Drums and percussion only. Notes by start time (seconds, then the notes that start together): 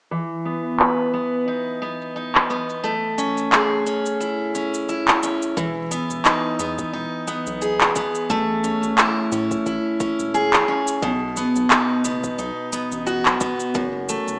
0.46 shaker
0.65 shaker
0.72 shaker
0.80 clap, shaker
0.89 shaker
1.14 shaker
1.33 shaker
1.48 shaker
1.82 shaker
2.01 shaker
2.16 shaker
2.35 clap
2.50 shaker
2.70 shaker
2.84 shaker
3.18 shaker
3.37 shaker
3.52 clap, shaker
3.87 shaker
4.06 shaker
4.21 shaker
4.55 shaker
4.74 shaker
4.89 shaker
5.08 clap
5.23 shaker
5.42 shaker
5.57 kick, shaker
5.92 shaker
6.10 shaker
6.25 clap, shaker
6.59 shaker
6.78 kick, shaker
7.28 shaker
7.47 shaker
7.62 shaker
7.81 clap
7.96 kick, shaker
8.15 shaker
8.30 kick, shaker
8.64 shaker
8.83 shaker
8.98 clap, shaker
9.32 shaker
9.51 kick, shaker
9.66 kick, shaker
10.00 kick, shaker
10.20 shaker
10.34 shaker
10.53 clap
10.87 shaker
11.02 kick, shaker
11.37 shaker
11.56 shaker
11.70 clap, shaker
12.05 shaker
12.24 kick, shaker
12.39 shaker
12.73 shaker
12.92 shaker
13.07 shaker
13.26 clap
13.41 kick, shaker
13.60 shaker
13.75 kick, shaker
14.09 shaker
14.28 shaker